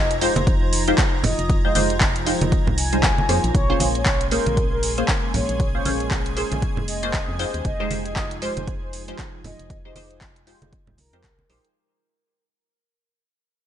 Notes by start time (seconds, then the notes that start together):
Already playing: F1 F3 D#4 F4 D#5 A#5 G#6
0.11 closed hi-hat
0.21 G#3 D#4 F4 G4 C5, open hi-hat
0.36 F1, closed hi-hat, high conga
0.47 kick, closed hi-hat
0.62 C5
0.73 open hi-hat
0.88 G#3 D#4 F4 G4 C5, closed hi-hat
0.98 kick, clap, closed hi-hat
1.24 F1 D#5, open hi-hat, low conga
1.39 F1, closed hi-hat
1.50 kick, closed hi-hat
1.64 G#3 D#4 F4 G4 C5 D#5
1.75 F1 G#3 D#4 F4 G4 C5, open hi-hat, high conga
1.90 closed hi-hat
2.00 kick, clap
2.16 closed hi-hat
2.26 G#3 D#4 F4 G4 C5, open hi-hat
2.41 F1, closed hi-hat, high conga
2.52 kick, closed hi-hat
2.67 C2, low conga
2.78 G#5, open hi-hat
2.93 G3 G#3 D#4 F4 C5, closed hi-hat
3.03 kick, clap, closed hi-hat
3.18 high conga
3.29 F2 A#3 C#4 F4 G#4 C5, open hi-hat
3.44 A#1, closed hi-hat
3.55 A#1 G#3 A#3 C#4 G#4 C#5 C6 G#6, kick, closed hi-hat
3.69 A#3 C#4 F4 G#4 C5
3.80 A#1 A#3 C#4 F4 G#4 C5, open hi-hat, high conga
3.95 C#5, closed hi-hat
4.06 kick, clap
4.21 closed hi-hat
4.31 A#3 C#4 F4 G#4 A#4 C5, open hi-hat
4.46 A#1, closed hi-hat, high conga
4.57 kick, closed hi-hat
4.72 A#4
4.83 open hi-hat
4.98 A#3 C#4 F4 G#4 C5, closed hi-hat
5.08 kick, clap, closed hi-hat
5.34 A#1 C#5, open hi-hat, low conga
5.49 A#1, closed hi-hat
5.60 kick, closed hi-hat
5.75 A#3 C#4 F4 G#4 C5 C#5
5.85 A#1 A#3 C#4 F4 G#4 C5, open hi-hat, high conga
6.00 closed hi-hat
6.11 kick, clap
6.26 closed hi-hat
6.37 A#3 C#4 F4 G#4 C5, open hi-hat
6.52 A#1, closed hi-hat, high conga
6.62 kick, closed hi-hat
6.77 F1, low conga
6.88 D#5, open hi-hat
7.03 A#3 C#4 F4 G#4 C5, closed hi-hat
7.13 kick, clap, closed hi-hat
7.29 F2
7.39 G#3 D#4 F4 G4 C5, open hi-hat
7.54 D#2, closed hi-hat
7.65 F1 F3 D#4 F4 D#5, kick, closed hi-hat
7.80 G#3 D#4 F4 G4 C5
7.91 F1 G#3 D#4 F4 G4 C5, open hi-hat, high conga
8.05 D#5, closed hi-hat
8.16 kick, clap
8.31 closed hi-hat
8.42 G#3 D#4 F4 G4 C5, open hi-hat
8.57 F1, closed hi-hat, high conga
8.68 kick, closed hi-hat
8.82 C5
8.93 open hi-hat
9.08 G#3 D#4 F4 G4 C5, closed hi-hat
9.19 kick, clap, closed hi-hat
9.44 F1 D#5, open hi-hat, low conga
9.59 F1, closed hi-hat
9.70 kick, closed hi-hat
9.85 G#3 D#4 F4 G4 C5 D#5
9.96 F1 G#3 D#4 F4 G4 C5, open hi-hat, high conga
10.11 closed hi-hat
10.21 kick, clap
10.36 closed hi-hat
10.47 G#3 D#4 F4 G4 C5, open hi-hat
10.62 F1, closed hi-hat, high conga
10.73 kick, closed hi-hat
10.87 C2, low conga
10.98 A#4, open hi-hat, high conga
11.13 F2 G#3 D#4 F4 G4 C5, closed hi-hat
11.24 C2, kick, clap, closed hi-hat
11.39 high conga
11.50 A#1 G#3 D#4 F4 G4 C5, open hi-hat
11.65 closed hi-hat